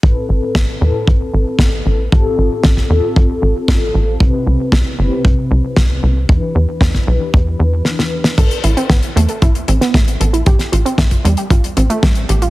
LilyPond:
<<
  \new Staff \with { instrumentName = "Analog polysynth" } { \time 4/4 \key a \minor \tempo 4 = 115 <a, c' e' a' b'>4. <a, c' e' a' b'>2~ <a, c' e' a' b'>8 | <a, c' f' g' a'>4. <a, c' f' g' a'>2~ <a, c' f' g' a'>8 | <c c' e' g' b'>4. <c c' e' g' b'>2~ <c c' e' g' b'>8 | <e d' e' g' b'>4. <e d' e' g' b'>2~ <e d' e' g' b'>8 |
r1 | r1 | }
  \new Staff \with { instrumentName = "Synth arpeggio sound" } { \time 4/4 \key a \minor r1 | r1 | r1 | r1 |
a'16 r16 e'16 c'16 b16 r16 a16 a'16 e'16 r16 c'16 b16 a16 r16 a'16 e'16 | g'16 r16 f'16 c'16 a16 r16 g16 g'16 f'16 r16 c'16 a16 g16 r16 g'16 f'16 | }
  \new Staff \with { instrumentName = "Analog synth bass" } { \clef bass \time 4/4 \key a \minor a,,8 a,,8 a,,8 e,8 a,,8 a,,8 a,,8 a,,8 | a,,8 a,,8 a,,8 e,8 a,,8 a,,8 a,,8 a,,8 | c,8 c,8 c,8 g,,8 c,8 c,8 c,8 c,8 | e,8 e,8 e,8 b,,8 e,8 e,8 r4 |
a,,8 a,,8 a,,8 e,8 a,,8 a,,8 a,,8 a,,8 | a,,8 a,,8 a,,8 e,8 a,,8 a,,8 a,,8 a,,8 | }
  \new DrumStaff \with { instrumentName = "Drums" } \drummode { \time 4/4 bd4 <bd sn>4 bd4 <bd sn>4 | bd4 <bd sn>16 <bd sn>8. bd4 <bd sn>4 | bd4 <bd sn>4 bd4 <bd sn>4 | bd4 <bd sn>16 <bd sn>8. bd4 sn16 sn8 sn16 |
<cymc hh bd>16 hh16 hh16 hh16 <hh bd sn>16 hh16 hh16 hh16 <hh bd>16 hh16 hh16 <hh sn>16 <hh bd sn>16 hh16 hh16 hh16 | <hh bd>16 <hh sn>16 hh16 hh16 <hh bd sn>16 <hh bd>16 hh16 hh16 <hh bd>16 hh16 hh16 hh16 <hh bd sn>16 hh16 hh16 hh16 | }
>>